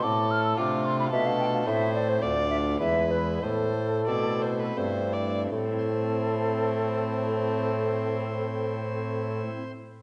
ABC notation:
X:1
M:3/4
L:1/16
Q:1/4=87
K:Am
V:1 name="Flute"
d'2 f' e' d'2 c' b e f g f | e2 d c d2 e2 e2 B2 | A8- A2 z2 | A12- |
A12 |]
V:2 name="Violin"
A4 F4 A4 | c4 d4 B4 | c4 d2 c B c2 d2 | C12- |
C12 |]
V:3 name="Pipe organ"
A,,4 [C,A,DF]4 [B,,A,DF]4 | [A,,A,CE]4 [D,,A,DF]4 [E,,^G,B,E]4 | A,,4 [B,,A,CE]4 [G,,A,CE]4 | [A,,A,CEc]12- |
[A,,A,CEc]12 |]
V:4 name="Bassoon" clef=bass
A,,4 C,4 B,,4 | A,,4 D,,4 E,,4 | A,,4 B,,4 G,,4 | A,,12- |
A,,12 |]